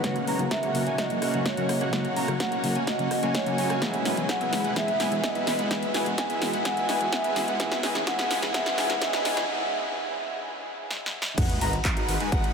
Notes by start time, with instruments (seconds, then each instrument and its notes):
0.03 detuned saw bass F#1, clean electric guitar C#3 F#3 A#3 F#4, analog synth pad C#3 A#3 F#4, supersaw synth A#3 C#4 F#4 C#5 F#5, kick, snare, closed hi-hat
0.16 closed hi-hat
0.27 detuned saw bass F#1, supersaw synth A#3 C#4 F#4 C#5 A#5, grand piano A#5, open hi-hat
0.39 clean electric guitar C#3 F#3 A#3 F#4, closed hi-hat
0.51 detuned saw bass F#1, vibraphone E5, kick, snare, closed hi-hat
0.63 supersaw synth A#3 C#4 F#4 C#5 F#5, grand piano F#5, closed hi-hat
0.74 detuned saw bass F#1, clean electric guitar C#3 F#3 A#3 F#4, open hi-hat
0.86 supersaw synth A#3 C#4 F#4 C#5 G#5, grand piano G#5, closed hi-hat
0.98 detuned saw bass F#1, supersaw synth A#3 C#4 F#4 C#5 F#5, vibraphone D#5, grand piano F#5, kick, snare, closed hi-hat
1.10 clean electric guitar C#3 F#3 A#3 F#4, closed hi-hat
1.22 detuned saw bass F#1, supersaw synth A#3 C#4 F#4 C#5 F#5, vibraphone D#5, grand piano F#5, cross-stick, open hi-hat
1.33 clean electric guitar C#3 F#3 A#3 F#4, closed hi-hat
1.46 detuned saw bass F#2, vibraphone C#5, kick, snare, closed hi-hat
1.57 clean electric guitar C#3 F#3 A#3 F#4, supersaw synth A#3 C#4 F#4 C#5 F#5, grand piano F#5, closed hi-hat
1.69 detuned saw bass F#1, cross-stick, open hi-hat
1.81 supersaw synth A#3 C#4 F#4 C#5 F#5, grand piano F#5, closed hi-hat
1.92 detuned saw bass F#1, clean electric guitar C#3 F#3 A#3 F#4, supersaw synth A#3 C#4 F#4 C#5 F#5, grand piano F#5, kick, snare, closed hi-hat
2.05 closed hi-hat
2.16 detuned saw bass F#1, supersaw synth A#3 C#4 F#4 C#5 A#5, grand piano A#5, open hi-hat
2.28 clean electric guitar C#3 F#3 A#3 F#4, cross-stick, closed hi-hat
2.40 detuned saw bass F#1, vibraphone F#5, kick, snare, closed hi-hat
2.52 supersaw synth A#3 C#4 F#4 C#5 F#5, grand piano F#5, closed hi-hat
2.63 detuned saw bass F#1, clean electric guitar C#3 F#3 A#3 F#4, open hi-hat
2.75 supersaw synth A#3 C#4 F#4 C#5 G#5, grand piano G#5, closed hi-hat
2.87 detuned saw bass F#2, supersaw synth A#3 C#4 F#4 C#5 F#5, vibraphone D#5, grand piano F#5, kick, snare, closed hi-hat
2.98 clean electric guitar C#3 F#3 A#3 F#4, closed hi-hat
3.11 detuned saw bass F#1, vibraphone D#5, cross-stick, open hi-hat
3.22 clean electric guitar C#3 F#3 A#3 F#4, supersaw synth A#3 C#4 F#4 C#5 G#5, grand piano G#5, closed hi-hat
3.35 detuned saw bass F#2, vibraphone C#5, kick, snare, closed hi-hat
3.46 clean electric guitar C#3 F#3 A#3 F#4, supersaw synth A#3 C#4 F#4 C#5 G#5, grand piano G#5, closed hi-hat
3.58 detuned saw bass F#2, supersaw synth A#3 C#4 F#4 C#5 G#5, grand piano G#5, open hi-hat
3.70 supersaw synth A#3 C#4 F#4 C#5 G#5, grand piano G#5, cross-stick, closed hi-hat
3.81 detuned saw bass E1, analog synth pad B2 G#3 E4, clean electric guitar E3 G#3 B3 G#4, supersaw synth G#3 B3 E4 B4 E5, grand piano E5, kick, snare, closed hi-hat, riser
3.94 closed hi-hat
4.05 detuned saw bass E1, supersaw synth G#3 B3 E4 B4 G#5, grand piano G#5, snare, open hi-hat
4.17 clean electric guitar E3 G#3 B3 G#4, closed hi-hat
4.29 detuned saw bass E1, vibraphone F#5, kick, snare, closed hi-hat
4.41 supersaw synth G#3 B3 E4 B4 E5, grand piano E5, closed hi-hat
4.52 detuned saw bass E1, clean electric guitar E3 G#3 B3 G#4, snare, open hi-hat
4.64 supersaw synth G#3 B3 E4 B4 F#5, grand piano F#5, closed hi-hat
4.76 detuned saw bass E1, clean electric guitar E3 G#3 B3 G#4, supersaw synth G#3 B3 E4 B4 E5, grand piano E5, vibraphone E5, kick, snare, closed hi-hat
4.88 closed hi-hat
5.00 detuned saw bass E1, supersaw synth G#3 B3 E4 B4 G#5, grand piano G#5, snare, open hi-hat
5.11 clean electric guitar E3 G#3 B3 G#4, closed hi-hat
5.24 detuned saw bass E2, vibraphone D#5, kick, snare, closed hi-hat
5.35 supersaw synth G#3 B3 E4 B4 E5, grand piano E5, closed hi-hat
5.46 detuned saw bass E1, clean electric guitar E3 G#3 B3 G#4, snare, open hi-hat
5.59 supersaw synth G#3 B3 E4 B4 F#5, grand piano F#5, closed hi-hat
5.70 detuned saw bass E1, clean electric guitar E3 G#3 B3 G#4, supersaw synth G#3 B3 E4 B4 E5, analog synth pad F#4, grand piano E5, kick, snare, closed hi-hat
5.83 closed hi-hat
5.94 detuned saw bass E1, supersaw synth G#3 B3 E4 B4 G#5, grand piano G#5, snare, open hi-hat
6.06 clean electric guitar E3 G#3 B3 G#4, closed hi-hat
6.18 detuned saw bass E1, vibraphone G#5, kick, snare, closed hi-hat
6.30 supersaw synth G#3 B3 E4 B4 E5, grand piano E5, closed hi-hat
6.41 detuned saw bass E1, clean electric guitar E3 G#3 B3 G#4, snare, open hi-hat
6.53 supersaw synth G#3 B3 E4 B4 F#5, grand piano F#5, closed hi-hat
6.65 detuned saw bass E1, clean electric guitar E3 G#3 B3 G#4, supersaw synth G#3 B3 E4 B4 E5, grand piano E5, vibraphone F#5, kick, snare, closed hi-hat
6.77 closed hi-hat
6.89 detuned saw bass E1, supersaw synth G#3 B3 E4 B4 G#5, grand piano G#5, snare, open hi-hat
7.00 clean electric guitar E3 G#3 B3 G#4, closed hi-hat
7.12 detuned saw bass E2, vibraphone E5, kick, snare, closed hi-hat
7.24 supersaw synth G#3 B3 E4 B4 E5, grand piano E5, closed hi-hat
7.35 detuned saw bass E1, clean electric guitar E3 G#3 B3 G#4, snare, open hi-hat
7.48 supersaw synth G#3 B3 E4 B4 F#5, grand piano F#5, closed hi-hat
7.59 detuned saw bass C#2, analog synth pad C#3 E4, clean electric guitar E3 G#3 B3 G#4, supersaw synth G#3 B3 E4 B4 E5, grand piano E5, kick, snare, closed hi-hat
7.72 snare, closed hi-hat
7.83 detuned saw bass C#2, supersaw synth G#3 B3 E4 B4 G#5, grand piano G#5, snare, open hi-hat
7.95 clean electric guitar E3 G#3 B3 G#4, snare, closed hi-hat
8.07 detuned saw bass C#2, clean electric guitar E3 G#3 B3 G#4, supersaw synth G#3 B3 E4 B4 E5, grand piano E5, vibraphone F#5, kick, snare, closed hi-hat
8.19 snare, closed hi-hat
8.31 detuned saw bass C#2, supersaw synth G#3 B3 E4 B4 G#5, grand piano G#5, snare, open hi-hat
8.42 clean electric guitar E3 G#3 B3 G#4, snare, closed hi-hat
8.54 detuned saw bass C#2, clean electric guitar E3 G#3 B3 G#4, supersaw synth G#3 B3 E4 B4 E5, grand piano E5, vibraphone E5, kick, snare, closed hi-hat
8.66 snare, closed hi-hat
8.78 detuned saw bass C#2, supersaw synth G#3 B3 E4 B4 G#5, grand piano G#5, snare, open hi-hat
8.89 clean electric guitar E3 G#3 B3 G#4, snare, closed hi-hat
9.01 detuned saw bass G#1, clean electric guitar E3 G#3 B3 G#4, supersaw synth G#3 B3 E4 B4 E5, vibraphone D#5, grand piano E5, kick, snare, closed hi-hat
9.13 snare, closed hi-hat
9.25 detuned saw bass C#2, supersaw synth G#3 B3 E4 B4 G#5, grand piano G#5, snare, open hi-hat
9.36 clean electric guitar E3 G#3 B3 G#4, snare, closed hi-hat
10.91 snare
11.06 snare
11.22 snare
11.38 detuned saw bass G#1, supersaw synth G#3 D#4 F#4 B4 F#5, grand piano F#5, kick, closed hi-hat, crash, sub drop
11.50 closed hi-hat
11.61 detuned saw bass G#1, supersaw synth G#3 D#4 F#4 B4 A#5, grand piano A#5, open hi-hat
11.73 closed hi-hat
11.85 detuned saw bass G#1, kick, clap, closed hi-hat
11.97 supersaw synth G#3 D#4 F#4 B4 F#5, grand piano F#5, closed hi-hat
12.09 detuned saw bass G#1, open hi-hat
12.20 supersaw synth G#3 D#4 F#4 B4 G#5, grand piano G#5, closed hi-hat
12.32 detuned saw bass G#1, supersaw synth G#3 D#4 F#4 B4 F#5, grand piano F#5, kick, closed hi-hat
12.44 closed hi-hat